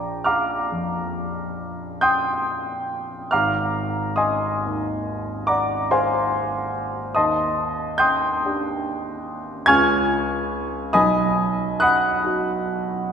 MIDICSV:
0, 0, Header, 1, 2, 480
1, 0, Start_track
1, 0, Tempo, 873362
1, 1826, Time_signature, 9, 3, 24, 8
1, 2784, Tempo, 835655
1, 5664, Tempo, 864553
1, 7353, End_track
2, 0, Start_track
2, 0, Title_t, "Grand piano"
2, 0, Program_c, 0, 0
2, 0, Control_c, 0, 64, 127
2, 0, Note_on_c, 0, 34, 41
2, 0, Note_on_c, 0, 74, 41
2, 0, Note_on_c, 0, 79, 42
2, 0, Note_on_c, 0, 82, 42
2, 0, Note_on_c, 0, 86, 56
2, 118, Note_off_c, 0, 79, 0
2, 118, Note_off_c, 0, 82, 0
2, 119, Note_off_c, 0, 74, 0
2, 131, Note_off_c, 0, 86, 0
2, 134, Note_on_c, 0, 89, 63
2, 140, Note_on_c, 0, 86, 53
2, 142, Note_on_c, 0, 82, 52
2, 146, Note_on_c, 0, 77, 51
2, 396, Note_on_c, 0, 41, 28
2, 1090, Note_off_c, 0, 86, 0
2, 1091, Note_off_c, 0, 82, 0
2, 1093, Note_off_c, 0, 77, 0
2, 1106, Note_on_c, 0, 91, 80
2, 1109, Note_off_c, 0, 89, 0
2, 1110, Note_on_c, 0, 87, 62
2, 1111, Note_on_c, 0, 84, 62
2, 1112, Note_on_c, 0, 79, 61
2, 1797, Note_off_c, 0, 34, 0
2, 1801, Note_off_c, 0, 87, 0
2, 1802, Note_off_c, 0, 79, 0
2, 1802, Note_off_c, 0, 84, 0
2, 1819, Note_on_c, 0, 89, 73
2, 1821, Note_off_c, 0, 91, 0
2, 1825, Note_on_c, 0, 86, 51
2, 1826, Note_on_c, 0, 82, 54
2, 1827, Note_off_c, 0, 41, 0
2, 1829, Note_on_c, 0, 77, 55
2, 1833, Note_on_c, 0, 32, 42
2, 1835, Control_c, 0, 64, 0
2, 1917, Control_c, 0, 64, 127
2, 2281, Note_off_c, 0, 86, 0
2, 2282, Note_off_c, 0, 82, 0
2, 2283, Note_off_c, 0, 77, 0
2, 2286, Note_on_c, 0, 87, 66
2, 2288, Note_on_c, 0, 84, 49
2, 2290, Note_on_c, 0, 75, 51
2, 2294, Note_on_c, 0, 80, 50
2, 2300, Note_off_c, 0, 89, 0
2, 2561, Note_on_c, 0, 39, 30
2, 2999, Note_off_c, 0, 84, 0
2, 3000, Note_off_c, 0, 75, 0
2, 3002, Note_off_c, 0, 80, 0
2, 3016, Note_on_c, 0, 86, 68
2, 3021, Note_off_c, 0, 87, 0
2, 3021, Note_on_c, 0, 82, 49
2, 3023, Note_on_c, 0, 74, 50
2, 3026, Note_on_c, 0, 78, 49
2, 3252, Note_off_c, 0, 82, 0
2, 3253, Note_off_c, 0, 74, 0
2, 3254, Note_off_c, 0, 78, 0
2, 3266, Note_off_c, 0, 86, 0
2, 3270, Note_on_c, 0, 84, 73
2, 3271, Note_on_c, 0, 72, 58
2, 3271, Note_on_c, 0, 80, 56
2, 3273, Note_on_c, 0, 77, 53
2, 3722, Note_off_c, 0, 72, 0
2, 3722, Note_off_c, 0, 80, 0
2, 3723, Note_off_c, 0, 77, 0
2, 3744, Note_off_c, 0, 84, 0
2, 3956, Note_off_c, 0, 32, 0
2, 3979, Note_on_c, 0, 87, 73
2, 3982, Note_off_c, 0, 39, 0
2, 3984, Control_c, 0, 64, 0
2, 3985, Note_on_c, 0, 84, 57
2, 3987, Note_on_c, 0, 75, 58
2, 3987, Note_on_c, 0, 81, 57
2, 3991, Note_on_c, 0, 39, 44
2, 4060, Control_c, 0, 64, 127
2, 4439, Note_off_c, 0, 84, 0
2, 4440, Note_off_c, 0, 75, 0
2, 4440, Note_off_c, 0, 81, 0
2, 4457, Note_on_c, 0, 91, 87
2, 4459, Note_off_c, 0, 87, 0
2, 4465, Note_on_c, 0, 79, 56
2, 4466, Note_on_c, 0, 84, 67
2, 4468, Note_on_c, 0, 87, 67
2, 4729, Note_on_c, 0, 62, 32
2, 4733, Note_on_c, 0, 67, 38
2, 5406, Note_off_c, 0, 79, 0
2, 5407, Note_off_c, 0, 84, 0
2, 5408, Note_off_c, 0, 87, 0
2, 5410, Note_off_c, 0, 39, 0
2, 5415, Note_off_c, 0, 62, 0
2, 5418, Note_off_c, 0, 67, 0
2, 5423, Note_on_c, 0, 92, 93
2, 5426, Note_off_c, 0, 91, 0
2, 5430, Note_on_c, 0, 80, 73
2, 5432, Note_on_c, 0, 85, 69
2, 5434, Note_on_c, 0, 89, 76
2, 5435, Control_c, 0, 64, 0
2, 5437, Note_on_c, 0, 65, 36
2, 5438, Note_on_c, 0, 61, 37
2, 5440, Note_on_c, 0, 37, 54
2, 5515, Control_c, 0, 64, 127
2, 6117, Note_off_c, 0, 80, 0
2, 6118, Note_off_c, 0, 85, 0
2, 6119, Note_off_c, 0, 89, 0
2, 6121, Note_off_c, 0, 61, 0
2, 6121, Note_off_c, 0, 65, 0
2, 6123, Note_off_c, 0, 37, 0
2, 6136, Note_off_c, 0, 92, 0
2, 6137, Note_on_c, 0, 87, 88
2, 6140, Note_on_c, 0, 80, 65
2, 6141, Note_on_c, 0, 75, 65
2, 6142, Note_on_c, 0, 83, 64
2, 6147, Note_on_c, 0, 35, 51
2, 6148, Control_c, 0, 64, 0
2, 6232, Control_c, 0, 64, 127
2, 6602, Note_off_c, 0, 75, 0
2, 6602, Note_off_c, 0, 80, 0
2, 6602, Note_off_c, 0, 83, 0
2, 6614, Note_off_c, 0, 87, 0
2, 6619, Note_on_c, 0, 90, 89
2, 6622, Note_on_c, 0, 87, 66
2, 6628, Note_on_c, 0, 83, 64
2, 6630, Note_on_c, 0, 78, 66
2, 6866, Note_on_c, 0, 63, 32
2, 6874, Note_on_c, 0, 66, 40
2, 7353, Note_off_c, 0, 35, 0
2, 7353, Note_off_c, 0, 63, 0
2, 7353, Note_off_c, 0, 66, 0
2, 7353, Note_off_c, 0, 78, 0
2, 7353, Note_off_c, 0, 83, 0
2, 7353, Note_off_c, 0, 87, 0
2, 7353, Note_off_c, 0, 90, 0
2, 7353, End_track
0, 0, End_of_file